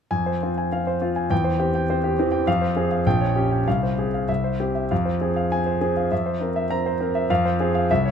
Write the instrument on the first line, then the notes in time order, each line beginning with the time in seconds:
grand piano
0.11 F2 G#5
0.26 C5
0.43 C4 F4
0.58 G#5
0.72 C4 F5
0.87 C5
1.02 C4 F4
1.16 G#5
1.30 E2 G5
1.44 C5
1.59 C4 G4
1.75 G5
1.90 C4 C5
2.04 G4
2.19 E3 C4
2.32 G5
2.47 F2 F5
2.61 C5
2.77 C4 G#4
2.91 F5
3.06 A#1 G5
3.21 C#5
3.36 C#4 G4
3.51 G5
3.67 C2 F5
3.83 C5
3.99 C4 G#4
4.14 F5
4.29 C2 E5
4.44 C5
4.60 C4 G4
4.75 E5
4.91 F2 F5
5.05 C5
5.21 C4 G#4
5.36 F5
5.52 C4 G#5
5.66 C5
5.81 C4 G#4
5.97 F5
6.12 F2 E5
6.26 C5
6.41 C4 A#4
6.56 E5
6.70 C4 A#5
6.86 C5
7.00 C4 A#4
7.15 E5
7.30 F2 F5
7.46 C5
7.60 C4 G#4
7.75 F5
7.91 C2 E5
8.05 C#5